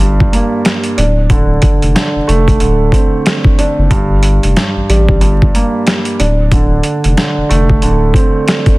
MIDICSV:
0, 0, Header, 1, 4, 480
1, 0, Start_track
1, 0, Key_signature, -1, "minor"
1, 0, Tempo, 652174
1, 958, Time_signature, 4, 2, 24, 8
1, 6465, End_track
2, 0, Start_track
2, 0, Title_t, "Grand piano"
2, 0, Program_c, 0, 0
2, 0, Control_c, 0, 64, 127
2, 0, Note_on_c, 0, 43, 76
2, 0, Note_on_c, 0, 55, 93
2, 238, Note_on_c, 0, 58, 78
2, 715, Note_off_c, 0, 43, 0
2, 717, Note_on_c, 0, 62, 84
2, 718, Note_off_c, 0, 58, 0
2, 720, Note_off_c, 0, 55, 0
2, 727, Control_c, 0, 64, 0
2, 838, Control_c, 0, 64, 127
2, 964, Note_on_c, 0, 50, 85
2, 1426, Note_off_c, 0, 50, 0
2, 1437, Note_on_c, 0, 50, 74
2, 1675, Note_on_c, 0, 57, 99
2, 1906, Note_off_c, 0, 50, 0
2, 1918, Note_off_c, 0, 62, 0
2, 1918, Note_on_c, 0, 50, 71
2, 2157, Note_on_c, 0, 60, 78
2, 2638, Note_on_c, 0, 62, 88
2, 2875, Note_on_c, 0, 43, 88
2, 2877, Note_off_c, 0, 57, 0
2, 2878, Note_off_c, 0, 50, 0
2, 2878, Note_off_c, 0, 60, 0
2, 2878, Note_off_c, 0, 62, 0
2, 2886, Control_c, 0, 64, 0
2, 3027, Control_c, 0, 64, 127
2, 3352, Note_off_c, 0, 43, 0
2, 3363, Note_on_c, 0, 43, 75
2, 3602, Note_on_c, 0, 55, 94
2, 3822, Note_off_c, 0, 43, 0
2, 3833, Note_on_c, 0, 43, 76
2, 4081, Note_on_c, 0, 58, 76
2, 4555, Note_off_c, 0, 43, 0
2, 4559, Note_on_c, 0, 62, 87
2, 4560, Note_off_c, 0, 55, 0
2, 4560, Note_off_c, 0, 58, 0
2, 4568, Control_c, 0, 64, 0
2, 4686, Control_c, 0, 64, 127
2, 4805, Note_on_c, 0, 50, 81
2, 5267, Note_off_c, 0, 50, 0
2, 5278, Note_on_c, 0, 50, 75
2, 5515, Note_on_c, 0, 57, 101
2, 5747, Note_off_c, 0, 50, 0
2, 5759, Note_off_c, 0, 62, 0
2, 5759, Note_on_c, 0, 50, 74
2, 5998, Note_on_c, 0, 60, 81
2, 6465, Note_off_c, 0, 50, 0
2, 6465, Note_off_c, 0, 57, 0
2, 6465, Note_off_c, 0, 60, 0
2, 6465, End_track
3, 0, Start_track
3, 0, Title_t, "Sub bass"
3, 0, Program_c, 1, 38
3, 2, Note_on_c, 1, 31, 102
3, 217, Note_off_c, 1, 31, 0
3, 722, Note_on_c, 1, 26, 103
3, 1171, Note_off_c, 1, 26, 0
3, 1347, Note_on_c, 1, 29, 93
3, 1431, Note_off_c, 1, 29, 0
3, 1587, Note_on_c, 1, 29, 49
3, 1624, Note_off_c, 1, 29, 0
3, 1682, Note_on_c, 1, 29, 101
3, 1897, Note_off_c, 1, 29, 0
3, 1922, Note_on_c, 1, 26, 108
3, 2137, Note_off_c, 1, 26, 0
3, 2785, Note_on_c, 1, 30, 96
3, 2870, Note_off_c, 1, 30, 0
3, 2877, Note_on_c, 1, 31, 113
3, 3233, Note_off_c, 1, 31, 0
3, 3267, Note_on_c, 1, 29, 91
3, 3351, Note_off_c, 1, 29, 0
3, 3507, Note_on_c, 1, 33, 48
3, 3544, Note_off_c, 1, 33, 0
3, 3601, Note_on_c, 1, 33, 88
3, 3841, Note_on_c, 1, 31, 102
3, 3852, Note_off_c, 1, 33, 0
3, 4056, Note_off_c, 1, 31, 0
3, 4562, Note_on_c, 1, 26, 110
3, 5011, Note_off_c, 1, 26, 0
3, 5186, Note_on_c, 1, 29, 92
3, 5271, Note_off_c, 1, 29, 0
3, 5427, Note_on_c, 1, 29, 50
3, 5464, Note_off_c, 1, 29, 0
3, 5522, Note_on_c, 1, 29, 99
3, 5737, Note_off_c, 1, 29, 0
3, 5762, Note_on_c, 1, 26, 110
3, 5977, Note_off_c, 1, 26, 0
3, 6465, End_track
4, 0, Start_track
4, 0, Title_t, "Drums"
4, 149, Note_on_c, 9, 36, 101
4, 223, Note_off_c, 9, 36, 0
4, 244, Note_on_c, 9, 42, 84
4, 318, Note_off_c, 9, 42, 0
4, 478, Note_on_c, 9, 42, 88
4, 484, Note_on_c, 9, 38, 109
4, 551, Note_off_c, 9, 42, 0
4, 558, Note_off_c, 9, 38, 0
4, 615, Note_on_c, 9, 42, 53
4, 688, Note_off_c, 9, 42, 0
4, 721, Note_on_c, 9, 42, 75
4, 794, Note_off_c, 9, 42, 0
4, 955, Note_on_c, 9, 42, 93
4, 956, Note_on_c, 9, 36, 115
4, 1029, Note_off_c, 9, 36, 0
4, 1029, Note_off_c, 9, 42, 0
4, 1190, Note_on_c, 9, 42, 79
4, 1196, Note_on_c, 9, 36, 106
4, 1264, Note_off_c, 9, 42, 0
4, 1269, Note_off_c, 9, 36, 0
4, 1342, Note_on_c, 9, 42, 61
4, 1416, Note_off_c, 9, 42, 0
4, 1440, Note_on_c, 9, 42, 90
4, 1443, Note_on_c, 9, 38, 117
4, 1514, Note_off_c, 9, 42, 0
4, 1516, Note_off_c, 9, 38, 0
4, 1684, Note_on_c, 9, 42, 68
4, 1758, Note_off_c, 9, 42, 0
4, 1823, Note_on_c, 9, 36, 98
4, 1829, Note_on_c, 9, 42, 56
4, 1897, Note_off_c, 9, 36, 0
4, 1902, Note_off_c, 9, 42, 0
4, 1915, Note_on_c, 9, 42, 83
4, 1989, Note_off_c, 9, 42, 0
4, 2150, Note_on_c, 9, 36, 85
4, 2163, Note_on_c, 9, 42, 87
4, 2223, Note_off_c, 9, 36, 0
4, 2236, Note_off_c, 9, 42, 0
4, 2398, Note_on_c, 9, 42, 88
4, 2404, Note_on_c, 9, 38, 112
4, 2471, Note_off_c, 9, 42, 0
4, 2477, Note_off_c, 9, 38, 0
4, 2535, Note_on_c, 9, 36, 101
4, 2609, Note_off_c, 9, 36, 0
4, 2640, Note_on_c, 9, 42, 73
4, 2713, Note_off_c, 9, 42, 0
4, 2875, Note_on_c, 9, 36, 111
4, 2875, Note_on_c, 9, 42, 93
4, 2949, Note_off_c, 9, 36, 0
4, 2949, Note_off_c, 9, 42, 0
4, 3110, Note_on_c, 9, 42, 79
4, 3184, Note_off_c, 9, 42, 0
4, 3263, Note_on_c, 9, 42, 58
4, 3336, Note_off_c, 9, 42, 0
4, 3360, Note_on_c, 9, 42, 92
4, 3362, Note_on_c, 9, 38, 121
4, 3433, Note_off_c, 9, 42, 0
4, 3436, Note_off_c, 9, 38, 0
4, 3604, Note_on_c, 9, 42, 67
4, 3677, Note_off_c, 9, 42, 0
4, 3743, Note_on_c, 9, 36, 97
4, 3816, Note_off_c, 9, 36, 0
4, 3836, Note_on_c, 9, 42, 82
4, 3910, Note_off_c, 9, 42, 0
4, 3989, Note_on_c, 9, 36, 100
4, 4063, Note_off_c, 9, 36, 0
4, 4083, Note_on_c, 9, 42, 88
4, 4157, Note_off_c, 9, 42, 0
4, 4317, Note_on_c, 9, 42, 84
4, 4323, Note_on_c, 9, 38, 111
4, 4391, Note_off_c, 9, 42, 0
4, 4397, Note_off_c, 9, 38, 0
4, 4454, Note_on_c, 9, 42, 56
4, 4528, Note_off_c, 9, 42, 0
4, 4561, Note_on_c, 9, 42, 70
4, 4634, Note_off_c, 9, 42, 0
4, 4795, Note_on_c, 9, 42, 94
4, 4796, Note_on_c, 9, 36, 109
4, 4869, Note_off_c, 9, 36, 0
4, 4869, Note_off_c, 9, 42, 0
4, 5030, Note_on_c, 9, 42, 81
4, 5104, Note_off_c, 9, 42, 0
4, 5182, Note_on_c, 9, 42, 61
4, 5256, Note_off_c, 9, 42, 0
4, 5280, Note_on_c, 9, 42, 90
4, 5282, Note_on_c, 9, 38, 121
4, 5354, Note_off_c, 9, 42, 0
4, 5356, Note_off_c, 9, 38, 0
4, 5524, Note_on_c, 9, 42, 65
4, 5598, Note_off_c, 9, 42, 0
4, 5663, Note_on_c, 9, 36, 99
4, 5737, Note_off_c, 9, 36, 0
4, 5756, Note_on_c, 9, 42, 86
4, 5829, Note_off_c, 9, 42, 0
4, 5990, Note_on_c, 9, 36, 89
4, 6003, Note_on_c, 9, 42, 85
4, 6064, Note_off_c, 9, 36, 0
4, 6077, Note_off_c, 9, 42, 0
4, 6238, Note_on_c, 9, 42, 86
4, 6244, Note_on_c, 9, 38, 110
4, 6312, Note_off_c, 9, 42, 0
4, 6318, Note_off_c, 9, 38, 0
4, 6375, Note_on_c, 9, 42, 56
4, 6376, Note_on_c, 9, 36, 102
4, 6448, Note_off_c, 9, 42, 0
4, 6450, Note_off_c, 9, 36, 0
4, 6465, End_track
0, 0, End_of_file